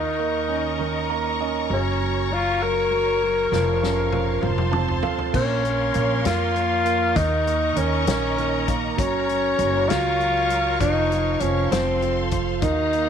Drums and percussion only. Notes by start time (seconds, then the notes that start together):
3.53 snare
3.83 snare
4.12 high tom
4.42 mid tom
4.58 mid tom
4.73 mid tom
4.88 floor tom
5.03 floor tom
5.19 floor tom
5.34 kick, crash
5.65 closed hi-hat
5.94 closed hi-hat
6.25 snare, closed hi-hat
6.56 closed hi-hat
6.86 closed hi-hat
7.16 kick, closed hi-hat
7.47 closed hi-hat
7.76 closed hi-hat
8.07 snare, closed hi-hat
8.38 closed hi-hat
8.68 kick, closed hi-hat
8.98 kick, closed hi-hat
9.29 closed hi-hat
9.59 closed hi-hat
9.90 snare, closed hi-hat
10.20 closed hi-hat
10.50 closed hi-hat
10.81 kick, closed hi-hat
11.12 closed hi-hat
11.40 closed hi-hat
11.72 snare, closed hi-hat
12.02 closed hi-hat
12.31 kick, closed hi-hat
12.62 kick, closed hi-hat
12.93 closed hi-hat